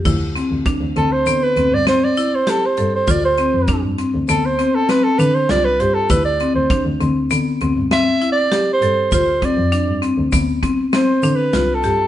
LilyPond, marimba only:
\new Staff \with { instrumentName = "Marimba" } { \time 5/4 \key d \dorian \tempo 4 = 99 e'8 c'8 d'8 c'8 b8 c'8 c'8 e'8 g'8 a'8 | f'8 c'8 d'8 c'8 b8 c'8 c'8 d'8 f'8 g'8 | e'8 c'8 d'8 c'8 b8 c'8 c'8 e'8 g'8 a'8 | f'8 c'8 d'8 c'8 b8 c'8 c'8 d'8 f'8 g'8 | }